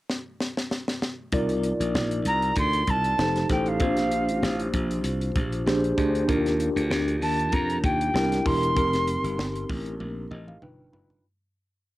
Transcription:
0.09 snare
0.40 snare
0.57 snare
0.71 snare
0.88 snare
1.02 snare
1.32 C2 D#4 F4 A#4 D5, kick, closed hi-hat
1.49 closed hi-hat
1.64 closed hi-hat
1.80 A#1, closed hi-hat
1.95 A#1, snare
2.11 closed hi-hat
2.25 C2 A#5, closed hi-hat
2.42 closed hi-hat
2.56 D2 C6, kick, closed hi-hat
2.73 closed hi-hat
2.87 C2 A5, kick, closed hi-hat
3.04 closed hi-hat
3.18 F1 D#4 G4 A4 C5, snare
3.36 snare, closed hi-hat
3.50 A1 D#4 G4 A4 C5 G5, kick, snare, closed hi-hat
3.66 F5, closed hi-hat
3.80 A#1 C4 F4 G4 C5, kick, closed hi-hat
3.87 D4
3.97 snare, closed hi-hat
4.11 closed hi-hat
4.28 A1, closed hi-hat
4.42 A1, snare
4.60 closed hi-hat
4.73 A#1, kick, closed hi-hat
4.91 closed hi-hat
5.04 C2, closed hi-hat
5.21 closed hi-hat
5.36 A#1, kick, closed hi-hat
5.52 closed hi-hat
5.66 A#1 D4 G4 G#4 C5, snare
5.84 closed hi-hat
5.97 D2 D4 G4 G#4 C5, kick, closed hi-hat
6.15 closed hi-hat
6.27 D#2 D4 F4 G4 A#4, kick, closed hi-hat
6.46 snare, closed hi-hat
6.60 closed hi-hat
6.76 D2, closed hi-hat
6.90 D2, snare
7.08 closed hi-hat
7.21 D#2 A5, open hi-hat
7.39 closed hi-hat
7.52 F2 A#5, kick, closed hi-hat
7.70 closed hi-hat
7.83 D#2 G5, kick, closed hi-hat
8.01 closed hi-hat
8.14 C2 D4 E4 G4 A#4, snare
8.32 snare, closed hi-hat
8.45 E1 D4 E4 G4 A#4 C6, kick, open hi-hat
8.63 closed hi-hat
8.75 F1 C4 D#4 G4 A#4, kick, closed hi-hat
8.93 snare, closed hi-hat
9.07 closed hi-hat
9.24 G1, closed hi-hat
9.38 G1, snare
9.55 closed hi-hat
9.69 A1, kick, open hi-hat
9.86 closed hi-hat
10.00 A#1, high tom
10.31 A1 D#5, mid tom
10.48 F5, mid tom
10.62 G1 D4 D#4 F4 B4 G5, mid tom
10.92 F#1 D4 D#4 F4 B4 B5, floor tom
11.10 floor tom

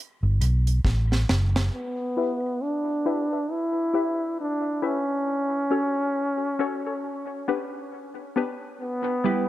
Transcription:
0.23 G1
0.41 B1, closed hi-hat
0.67 closed hi-hat
0.85 A1, kick, snare
1.12 snare
1.29 F#1, snare
1.56 snare
1.74 B3
2.17 E4 G4 B4 E5
2.63 D4
3.06 E4 G4 B4 E5
3.33 B4 E5
3.52 E4
3.94 E4 G4 B4 E5
4.41 D4
4.82 C#4 E4 G4 B4 E5
5.70 C#4 F#4 A4 C#5
6.59 C#4 F#4 A4 C#5
6.86 A4 C#5
7.48 B3 D4 G4 B4
8.36 B3 D4 G4 B4
8.81 B3
9.24 G3 B3 E4 G4 B4

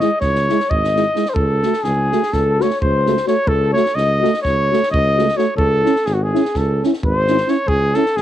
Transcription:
0.00 G#3 D#5, snare
0.20 C#2 C#5, kick, snare
0.35 snare
0.49 G#3 E4, snare
0.60 snare
0.70 G#1 D#5, kick
0.84 snare
0.96 G#3 E4, snare
1.15 G#3 E4, snare
1.26 C5, snare
1.34 C#2 A4, kick
1.63 A3 F#4, snare
1.73 snare
1.83 C#2 G#4, snare
2.12 A3 F#4, snare
2.23 snare
2.32 C#2 A4, kick, snare
2.59 A3 F#4 C#5, snare
2.70 snare
2.81 C#2 C5, kick
3.06 A3 F#4, snare
3.17 snare
3.26 A3 F#4 C#5, snare
3.47 C#2 A4, kick
3.73 A3 F#4 C#5, snare
3.86 snare
3.95 C#2 D#5, snare
4.21 A3 F#4, snare
4.34 snare
4.42 C#2 C#5, kick, snare
4.71 A3 F#4, snare
4.83 snare
4.91 C#2 D#5, kick
5.17 A3 F#4, snare
5.29 snare
5.37 A3 F#4 C#5, snare
5.56 C#2 A4, kick
5.61 A4
5.83 C#4 E4, snare
5.96 snare
6.06 G#1 G#4, snare
6.13 F#4
6.23 G#4
6.33 C#4 E4, snare
6.45 snare
6.54 C#2 A4, kick, snare
6.83 C#4 E4, snare
6.93 snare
7.03 G#1 C5, kick
7.07 C5
7.27 C#4 E4, snare
7.37 snare
7.47 C#4 E4 C#5, snare
7.68 C#2 G#4, kick
7.94 C#4 E4 A4, snare
8.06 snare
8.15 G#1 G#4, snare

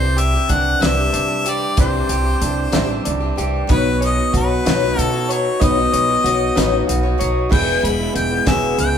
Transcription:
Already playing: C2 C3 E4 C5 D5 E5 D6
0.01 G3 D4 G4
0.17 G4 E5, closed hi-hat
0.34 G3 D4 G4
0.48 C2 E3 G3 D4 G4 F#5, kick, closed hi-hat
0.80 C2 C3 E3 G3 D4 E4 G4 C5 D5 E5, snare, closed hi-hat
0.97 G3 D4 G4
1.13 C3 D4, closed hi-hat
1.28 G3 D4 G4
1.44 E3 G3 D4 G4, closed hi-hat
1.50 D5
1.77 C2 C3 E3 G3 D4 E4 G4 C5 D5, kick, closed hi-hat
1.93 G3 D4 G4
2.09 C2 G4, closed hi-hat
2.24 G3 D4 G4
2.40 C2 E3 G3 D4 G4, closed hi-hat
2.72 A1 C3 E3 G3 D4 E4 G4 C5 E5, snare, closed hi-hat
2.86 G3 D4 G4
3.05 C2 D4, closed hi-hat
3.20 G3 D4 G4
3.36 C2 E3 G3 D4 G4, closed hi-hat
3.67 B1 B3 D#4 F#4 B4 C#5 C#6, kick, closed hi-hat
3.71 B4 D#5
3.85 D#4 F#4 C#5
4.01 C#5, closed hi-hat
4.06 D#5
4.16 D#4 F#4 C#5
4.33 B1 B3 D#4 F#4 C#5, kick, closed hi-hat
4.37 B4
4.65 B1 B3 D#4 F#4 B4 C#5, snare, closed hi-hat
4.81 D#4 F#4 C#5
4.97 B2 F#4 A4, closed hi-hat
5.12 D#4 F#4 C#5
5.28 B3 D#4 F#4 C#5, closed hi-hat
5.32 C#5
5.60 B1 B3 D#4 F#4 B4 C#5 D#5 D#6, kick, closed hi-hat
5.64 D#5
5.75 D#4 F#4 C#5
5.92 B1 C#5, closed hi-hat
6.08 D#4 F#4 C#5
6.23 B1 B3 D#4 F#4 C#5, closed hi-hat
6.55 A1 B3 D#4 F#4 B4 C#5 D#5, snare, closed hi-hat
6.70 D#4 F#4 C#5
6.87 B1 F#4, closed hi-hat
7.03 D#4 F#4 C#5
7.18 B1 B3 D#4 F#4 C#5, closed hi-hat
7.49 E1 E2 B2 E3 G#3 B3 E4 G#4 B4 E5 G5 B5, kick, crash
7.83 E1 E3 G#3 B3 E4 B5, closed hi-hat
7.99 E3 G#3 B3 E4
8.14 E1 B3 G5, closed hi-hat
8.30 E3 G#3 B3 E4
8.46 E1 E2 B2 E3 G#3 B3 E4 G#4 C#5 E5, kick, snare, closed hi-hat
8.78 C#2 E3 G#3 B3 E4 G5, closed hi-hat
8.94 E4

